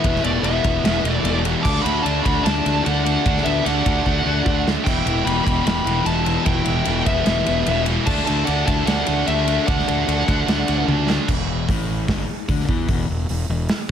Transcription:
Already playing: B3 E5
0.04 E1 E2 B2 E3, kick, ride
0.16 snare
0.23 E1 E2 B2 E3 A3 D5, ride
0.42 E1 E2 B2 E3 B3 E5, ride
0.63 E1 E2 B2 E3, kick, ride
0.83 E1 E2 B2 E3, snare, ride
1.03 E1 E2 B2 E3, ride
1.11 A3 D5
1.23 E1 E2 B2 E3, ride
1.45 E2 B2 E3, ride
1.62 D2 D3 A3 A4 D6, kick, crash
1.66 D4
1.77 snare
1.82 D2 D3 A3 D4 F#4 B5, ride
2.03 D2 D3 A3 D4 A5, ride
2.22 D2 D3 A3 F#4 B5, kick, ride
2.26 D4
2.43 D2 D3 A3 D4 A5, snare, ride
2.65 D2 D3 A3 D4, ride
2.84 D2 D3 A3 D4 F#5, ride
3.04 D3 A3 D4 F#5, ride
3.25 D2 D3 A3 D4, kick, ride
3.37 snare
3.44 D2 D3 A3 B3 D4 E5, ride
3.65 D2 D3 A3 D4 F#5, ride
3.86 D2 D3 A3 D4, kick, ride
4.06 D2 D3 A3 D4, kick
4.26 D2 D3 A3 D4
4.46 D2 D3 A3 D4, kick
4.66 D3 A3 D4, snare
4.84 E1 E2 B2 E3 E4 G5, kick, crash
5.05 E1 E2 B2 E3, ride
5.25 E1 E2 B2 E3 G4 B5, ride
5.44 E1 E2 B2 E3 G4 B5, kick, ride
5.65 E1 E2 B2 E3 G4 B5, snare, ride
5.84 E1 E2 B2 E3, ride
6.06 E1 E2 B2 E3 E4 A5, ride
6.26 E2 B2 E3, ride
6.45 E1 E2 B2 E3 E4 G5, kick, ride
6.66 E1 E2 B2 E3, ride
6.85 E1 E2 B2 E3, ride
7.05 E1 E2 B2 B3 E5, kick, ride
7.09 E3
7.26 E1 E2 B2 E3, snare, ride
7.46 E1 E2 B2 E3, ride
7.66 E1 E2 B2 E3, ride
7.86 E2 B2 E3, ride
8.05 D2 D3 A3 D4 A5, kick, crash
8.18 snare
8.26 D2 D3 A3 D4 E4 A5, ride
8.45 D2 D3 A3 D4 F#5, ride
8.49 D4
8.66 D2 D3 A3 D4 E4 A5, kick, ride
8.86 D2 D3 A3 D4 F#5, snare, ride
9.07 D2 D3 A3 D4, ride
9.27 D2 D3 A3 D4 E5, ride
9.48 D3 A3 D4, ride
9.66 D2 D3 A3 D4 F#5, kick, ride
9.79 snare
9.87 D2 D3 A3 D4, ride
10.07 D2 D3 A3 D4, ride
10.27 D2 D3 A3 D4, kick, ride
10.47 D2 D3 A3 D4, snare, ride
10.68 D2 D3 A3 D4, ride
10.88 D2 D3 A3 D4, high tom
11.09 D3 A3 D4, snare
11.28 E1 E2, kick, crash
11.69 A1 A2, kick, open hi-hat
12.08 G1 G2, kick, snare, open hi-hat
12.29 muted fingered electric bass stroke, muted overdriven electric guitar stroke
12.48 D2 D3, kick, open hi-hat
12.60 snare
12.68 E2 E3, kick
12.88 E1 E2, kick, open hi-hat
13.10 E1 E2
13.29 E1 E2, open hi-hat
13.49 E1 E2
13.69 snare, open hi-hat

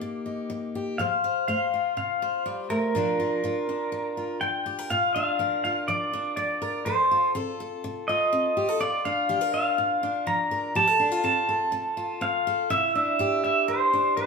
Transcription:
Already playing: A#3 D#4 G4
0.01 A#2
0.26 D#4
0.50 G3
0.75 G4
0.98 F3 C5 F5
1.24 C5
1.48 A3 C5 F5
1.74 F4
1.97 C3 F5
2.22 C5
2.46 G3
2.70 A3 A#4
2.95 A#2 F3 D4 F4
3.20 F4
3.44 F3 F4
3.69 D4
3.92 F3
4.17 F4
4.41 F3 G5
4.66 G4
4.79 A#4
4.90 A#2 F4 F5
5.15 D4 F5
5.39 F3 A#4
5.64 F4 F5
5.88 F3 D5
6.13 D4
6.36 F3 D5
6.62 A#4
6.85 F3 A4 C5
7.11 F4
7.35 C4 A4
7.60 A4
7.84 C3
8.08 F4 D#5
8.33 C4
8.57 G4
8.69 A4
8.80 A#2 F4 D5
9.05 D4 F5
9.29 F3 G4
9.41 A#4
9.54 F4 F5
9.78 A#2
10.03 D4
10.27 F3 A#5
10.51 A#4
10.75 F3 G4 A5
10.87 A4
11.00 D4
11.12 F4
11.24 C4 A4 A5
11.49 A4
11.72 C3
11.97 F4
12.21 C4 F5
12.47 A4
12.70 C3 E4 E5
12.95 D4 E5
13.19 G3 G4
13.44 E4 E5
13.68 G2 C5
13.93 D4
14.17 G3 C5

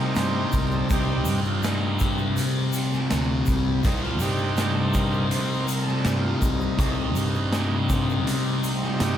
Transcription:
Already playing: C3 G3 C4 D#4
0.00 A#4
0.15 G2 C5, snare, closed hi-hat, shaker
0.52 C2 A#4, kick, closed hi-hat, shaker
0.71 A4, shaker
0.90 C2 C3 G3 C4 D#4 G4, kick, closed hi-hat, shaker
1.25 G2, closed hi-hat, shaker
1.45 F4, shaker
1.63 D#4, snare, closed hi-hat, shaker
1.99 kick, closed hi-hat, shaker
2.18 shaker
2.37 closed hi-hat, shaker
2.73 closed hi-hat, shaker
2.93 snare, shaker
3.11 D2, snare, closed hi-hat, shaker
3.46 C2, kick, closed hi-hat, shaker
3.84 C2 C3 G3 C4 D#4, kick, closed hi-hat, shaker
4.03 F4, snare
4.20 G2 G3 C4 D#4 G4, closed hi-hat, shaker
4.37 shaker
4.57 G4, snare, closed hi-hat, shaker
4.74 A4
4.93 A#4, kick, closed hi-hat, shaker
5.13 shaker
5.31 C4 C5, closed hi-hat, shaker
5.35 G3 D#4
5.65 A#4, closed hi-hat, shaker
5.82 A4
5.87 snare
6.01 G4
6.05 G2, snare, closed hi-hat, shaker
6.21 F4
6.40 C2 D#4, kick, closed hi-hat, shaker
6.61 shaker
6.78 C2 C3 G3 C4, kick, closed hi-hat, shaker
7.16 G2, closed hi-hat, shaker
7.35 shaker
7.53 snare, closed hi-hat, shaker
7.89 G3 C4 D#4, kick, snare, closed hi-hat, shaker
8.09 shaker
8.27 closed hi-hat, shaker
8.64 closed hi-hat, shaker
8.83 snare
9.00 G2 G4, snare, closed hi-hat, shaker

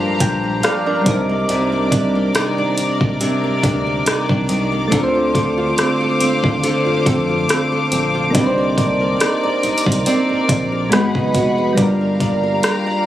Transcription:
Already playing: G2 F3 G3 A#3 D4 F4 G4 A#4 F5 A#5
0.01 A#1 A#3
0.20 A#1 D4 G5, kick, closed hi-hat
0.43 A#3
0.63 F3 D5 F5, cross-stick, closed hi-hat
0.86 D4 A#4 D5
1.01 G3 C4
1.06 C2 C3 D4 D#4 A#4 D5 D6, kick, closed hi-hat
1.11 A#4
1.29 A#3
1.49 C2 C3 D4, closed hi-hat
1.72 A#3
1.92 D4, kick, closed hi-hat
2.15 A#3
2.35 D#3, cross-stick, closed hi-hat
2.58 D4
2.78 A#1, closed hi-hat
3.01 A#1 A#3, kick
3.20 C3 D4, closed hi-hat
3.44 D2 A#3
3.63 D2 D4, kick, closed hi-hat
3.86 A#3
4.06 D#3, cross-stick, closed hi-hat
4.29 C2 D4, kick
4.49 C2 D#3, closed hi-hat
4.72 A#3
4.88 D3 A3 C4
4.92 D2 D4 F4 A4 C5 F5, kick, closed hi-hat
4.97 A#4
5.03 C5
5.15 F4
5.34 A4, kick, closed hi-hat
5.58 F4
5.77 C4, cross-stick, closed hi-hat
6.01 A4
6.20 D#2 C4, closed hi-hat
6.43 D#2 F4, kick
6.63 D3 A4, closed hi-hat
6.86 F2 F4
7.06 F2 A4, kick, closed hi-hat
7.29 F4
7.49 C4, cross-stick, closed hi-hat
7.72 A4
7.92 A#1 C4, closed hi-hat
8.15 F4
8.30 A#3 C4 D4
8.35 C2 D#4 G4 A#4 D5, kick, closed hi-hat
8.40 B4
8.46 C5
8.58 A#4
8.77 D5, kick, closed hi-hat
9.01 A#4
9.20 D#4, cross-stick, closed hi-hat
9.43 D5
9.63 C2 D#4, closed hi-hat
9.78 closed hi-hat
9.86 C2 A#4, kick
9.92 closed hi-hat
10.06 C4 D5, closed hi-hat
10.29 A#1 A#4
10.49 A#1 D5, kick, closed hi-hat
10.72 A#4
10.90 G#1 G#3 B3 D#4 F#4 G#4 F#5 B5, cross-stick, closed hi-hat
10.94 B4
11.15 F#1 D#5, kick
11.35 F1 F#4, kick, closed hi-hat
11.58 B4
11.73 G3 A#3
11.77 G1 G3 D4 F4 G4 D5 F5 A#5, kick, closed hi-hat
11.82 A#4
12.01 A#4
12.20 D5, kick, closed hi-hat
12.43 A#4
12.63 F4, cross-stick, closed hi-hat
12.86 D5

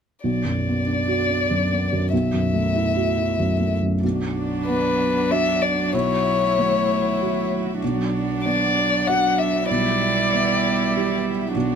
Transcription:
0.24 B1 D5
0.45 F#2
0.68 B3
0.87 D4
1.08 F#4
1.30 D4
1.51 F#2
1.71 B3
1.93 F#2
2.12 B1 E5
2.34 F#2
2.54 A3
2.75 E4
2.96 F#4
3.18 E4
3.39 F#2
3.60 A3
3.82 F#2
4.02 B1 F#3 B3 D4 F#4 D5
4.67 B3 B4
5.31 D4 F#4 E5
5.62 D5
5.93 B1 A3 E4 C#5 E5
6.59 A3
7.21 E4 F#4
7.81 B1 F#3 B3 D4 D5
8.44 B3 D5
9.07 D4 F#4 F#5
9.38 E5
9.68 B1 G3 E4 G4 D5 E5
10.33 B3
10.95 E4 G4
11.54 B1 F#3 D4 F#4 D5

